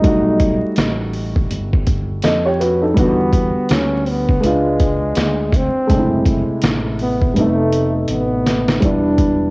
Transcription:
Already playing: D#4
0.02 B1 G3 A3 D#4, kick, closed hi-hat
0.06 F#4
0.40 kick, closed hi-hat
0.62 muted fretless electric bass stroke
0.76 A1, snare, closed hi-hat
1.13 open hi-hat
1.36 kick
1.50 G1, closed hi-hat
1.73 kick
1.87 kick, closed hi-hat
2.22 F2 A4 D#5, snare, closed hi-hat
2.45 G4 C#5
2.60 F#4 B4, closed hi-hat
2.82 D#4 A4
2.94 E2 D3 G3 B3, kick, closed hi-hat
2.99 B3 F#4
3.33 kick, closed hi-hat
3.55 muted fretless electric bass stroke
3.69 D2, snare, closed hi-hat
3.73 C#4
4.06 B3, open hi-hat
4.29 kick
4.40 C#2 G#3 D4 B4, closed hi-hat
4.46 G#3 F4
4.80 kick, closed hi-hat
5.15 D2, snare, closed hi-hat
5.52 C4, kick, closed hi-hat
5.75 muted fretless electric bass stroke
5.87 F#1 C3 G#3 A3, kick, closed hi-hat
5.92 D4
5.99 E4
6.26 kick, closed hi-hat
6.48 muted fretless electric bass stroke
6.62 A1, snare, closed hi-hat
6.99 B3, open hi-hat
7.22 kick
7.34 F1 C3 G3 A3 B3, closed hi-hat
7.39 A3 D#4
7.72 closed hi-hat
8.08 A1 B3, closed hi-hat
8.47 snare, closed hi-hat
8.68 snare
8.80 E1 G3 B3 D4, kick, closed hi-hat
8.85 D4 E4
9.18 kick, closed hi-hat

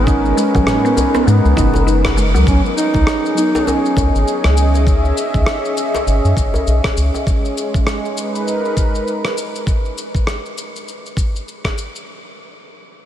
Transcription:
Already playing: G#1 G#3 D#4 A#4 B4
0.06 C#4 D#4, kick, shaker
0.25 shaker
0.37 G#3, shaker
0.55 G#1 F#3, kick, djembe tone, shaker
0.67 cross-stick, mid tom, shaker
0.85 B3, shaker
0.97 djembe bass, shaker
1.15 B3, djembe slap, shaker
1.27 G#2 G#3 B3, shaker
1.45 C#2, djembe tone, shaker
1.56 F#1 D#4, kick, mid tom, djembe tone, shaker
1.74 djembe slap, djembe bass, shaker
1.87 D#4, shaker
2.05 kick, cross-stick, djembe tone, shaker
2.17 G#3, shaker
2.34 C#2 F#3, djembe tone, shaker
2.45 C#2 F#3 B3 C#4, kick, shaker
2.49 D#4
2.66 shaker
2.77 D#4, shaker
2.94 C#2, kick, djembe tone, shaker
3.02 G#4
3.07 cross-stick, shaker
3.15 D#5
3.26 shaker
3.35 F#3 B3 D#4, shaker
3.55 djembe slap, shaker
3.67 C#4, djembe tone, shaker
3.85 shaker
3.96 C#2, kick, djembe slap, djembe bass, shaker
4.14 G#1, shaker
4.28 shaker
4.44 C#2, cross-stick, shaker
4.57 shaker
4.64 E5
4.74 djembe slap, shaker
4.87 kick, shaker
5.05 shaker
5.17 shaker
5.34 C#2, kick, shaker
5.46 cross-stick, shaker
5.65 shaker
5.77 shaker
5.95 djembe slap, shaker
6.06 G#1, shaker
6.24 F#2, shaker
6.37 G#1, kick, shaker
6.54 djembe slap, djembe bass, shaker
6.67 B1, shaker
6.84 kick, cross-stick, shaker
6.97 C#2, shaker
7.14 djembe tone, shaker
7.27 G#3, kick, shaker
7.45 shaker
7.58 shaker
7.74 kick, shaker
7.87 cross-stick, shaker
8.05 D#4, shaker
8.17 B4, shaker
8.35 A#4, shaker
8.48 shaker
8.65 shaker
8.77 kick, shaker
8.95 shaker
9.08 shaker
9.25 cross-stick, shaker
9.38 shaker
9.55 shaker
9.67 kick, shaker
9.85 shaker
9.98 shaker
10.15 kick, shaker
10.27 cross-stick, shaker
10.46 shaker
10.58 shaker
10.76 shaker
10.88 shaker
11.06 shaker
11.17 kick, shaker
11.36 shaker
11.48 shaker
11.65 kick, cross-stick, shaker
11.78 shaker
11.95 shaker

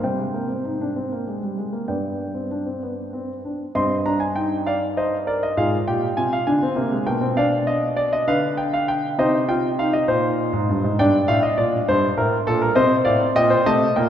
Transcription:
0.03 C3 G3 C5 G5
0.19 G#3
0.34 A#3
0.48 C4
0.65 D#4
0.81 D4
0.96 C4
1.12 A#3
1.27 G#3
1.43 G3
1.58 G#3
1.73 A#3
1.88 G2 B3 D5 G5
2.34 C4
2.51 D4
2.66 C4
2.83 B3
3.13 C4
3.45 D4
3.75 G2 C4 D#5 C6
4.06 D4 A#5
4.20 G#5
4.35 D#4 G5
4.67 D5 F5
4.97 C5 D#5
5.27 A#4 D5
5.43 D#5
5.57 G#2 F4 G#4 F5
5.87 A#2 G4 G5
6.17 C3 F4 G#5
6.33 F5
6.47 D3 D4 G#5
6.63 C4
6.76 C3 A#3
6.91 G#3
7.06 B2 A#3 G5
7.21 C4
7.37 D4 D5 F5
7.67 D#5
7.97 D5
8.13 D#5
8.28 D3 B4 F5
8.57 G5
8.73 F5
8.88 G5
9.19 C3 D#4 C5 D#5
9.49 F4 G5
9.79 D#4 F5
9.93 D#5
10.08 A#2 C5
10.53 G#2
10.69 G2
10.84 G#2
10.99 G2 D4 D5 G5
11.28 A2 F5
11.43 D#5
11.57 A#2 D5
11.88 G2 C5
12.17 A2 A#4
12.47 A#2 A4
12.62 A#4
12.75 C3 C4 C5 D#5
13.05 A2 D5 F5
13.36 A#2 D#5 G5
13.50 C5
13.66 C3 A3 D#5 A5
13.96 A#2 A#3 G5

